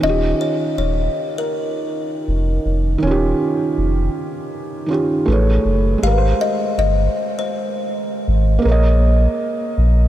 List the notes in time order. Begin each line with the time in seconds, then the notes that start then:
Already playing: D#3
0.00 D#1 C#4 D#5
0.05 F4
0.09 G4
0.41 C#5
0.78 D#1 C#5
1.38 A#4
2.28 F1
2.66 F1
2.98 D#3
3.02 D#1 C#4
3.07 F4
3.11 G4
3.78 F1
4.86 D#3 C#4
4.91 F4 G4
5.26 A1 A3 G#4
5.30 B4 C#5
5.65 F#1
5.98 G#3
6.03 G#1 G4 F5
6.07 A#4
6.11 B4
6.18 C5
6.41 D#5
6.78 G1 D#5
7.39 C5
8.28 G#1
8.59 A#3 G#4
8.65 A#1 A#4 C#5
8.71 D#5
9.78 A#1